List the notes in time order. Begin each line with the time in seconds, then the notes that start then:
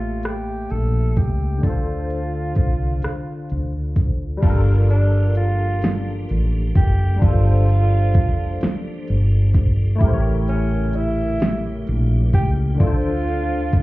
Already playing: A1 A3 A#3 F4 G4 C#5 E5
0.23 G4, cross-stick, closed hi-hat
0.70 A#1 A4, closed hi-hat
1.16 C#2 G4, kick, closed hi-hat
1.57 D3 D4
1.63 D2 F4 A4, kick, closed hi-hat
1.69 C5
2.10 closed hi-hat
2.55 C2, kick, closed hi-hat
3.02 muted fretless electric bass stroke, cross-stick, closed hi-hat
3.50 D2, closed hi-hat
3.96 kick, closed hi-hat
4.37 G3 D4
4.42 G1 F3 G3 A#3 F4 G4 A4, kick, closed hi-hat, crash
4.49 A#4
4.90 D4, closed hi-hat
5.35 F4, closed hi-hat
5.82 snare, closed hi-hat
6.29 A1, closed hi-hat
6.75 F#1 G4, kick, closed hi-hat
7.16 G3 D4
7.22 G1 F4 A4, kick, closed hi-hat
7.28 C5
7.69 closed hi-hat
8.14 F1, kick, closed hi-hat
8.61 muted fretless electric bass stroke, snare, closed hi-hat
9.08 G1, closed hi-hat
9.54 kick, closed hi-hat
9.95 A3 E4
10.00 A1 A#2 C#3 G3 G4 A#4, kick, closed hi-hat
10.07 C5
10.13 C#5
10.48 C#4, closed hi-hat
10.93 E4, closed hi-hat
11.40 snare, closed hi-hat
11.87 A#1, closed hi-hat
12.33 C#2 G4, kick, closed hi-hat
12.75 D3 D4
12.80 D2 D3 C4 F4 A4, kick, closed hi-hat
12.87 C5
13.28 closed hi-hat
13.73 C2, kick, closed hi-hat